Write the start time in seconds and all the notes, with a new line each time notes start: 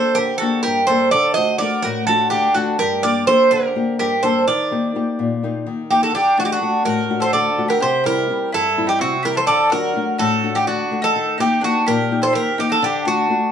Already playing: A#3 D4 G4 A4 C5
0.15 D3 G4 A#4
0.38 A#3 F#4 A4
0.42 D4 G4
0.63 G2 G4 A#4
0.87 A#3 D4 G4 A4 C5
1.11 D3 A4 D5
1.34 A3 D4 F#4 C5 D#5
1.58 A3 D4 F#4 A#4 D5
1.82 A2 F#4 A#4
2.07 A3 D4 F#4 A4
2.30 D3 D4 G4
2.54 A3 D4 F#4
2.79 G2 G4 A#4
3.03 A#3 D4 G4 A#4 D5
3.27 A#3 D4 G4 A4 C5
3.51 D3 G4 A#4
3.75 A#3 D4 G4
3.99 G2 G4 A#4
4.23 A#3 D4 G4 A4 C5
4.47 D#3 A#4 D5
4.71 A#3 D#4 G4
4.95 A#3 D#4 G4
5.19 A#2
5.43 A#3 D#4 G4
5.66 D#3
5.90 A#3 D#4 G4
6.03 F#4 A4
6.15 D3 D4 G4
6.38 A3 D4 F#4
6.45 D#4 G4
6.52 D4 F#4
6.62 A3 D4 F#4
6.85 A2 F#4 A#4
7.09 A3 D4 F#4
7.20 A4 C5
7.33 D3 A4 D5
7.58 A3 D4 F#4
7.68 G4 A#4
7.80 C3 G4 C5
8.04 G3 C4 E4 G4 A#4
8.29 G3 C4 E4
8.52 G2 E4 A4
8.77 G3 C4 E4
8.87 D#4 G4
8.99 C3 C4 F#4
9.23 G3 C4 E4 G4 A#4
9.35 A4 C5
9.46 D3 A4 D5
9.70 F#3 D4 F#4 A#4
9.96 A3 D4 F#4
10.18 A2 F#4 A4
10.43 A3 D4 F#4
10.55 D#4 G4
10.67 D3 D4 F#4
10.91 A3 D4 F#4
11.02 D#4 A4
11.16 D#3
11.38 A#3 D#4 G4
11.61 A#3 D4 D#4 F#4 G4
11.86 A#2 G4 A#4
12.11 A#3 D#4 G4
12.22 A4 C5
12.33 D#3 G4 A#4
12.58 A#3 D#4 G4
12.69 F#4 A4
12.82 D3 D4 G4
13.05 A3 D4 F#4
13.30 A3 D4 F#4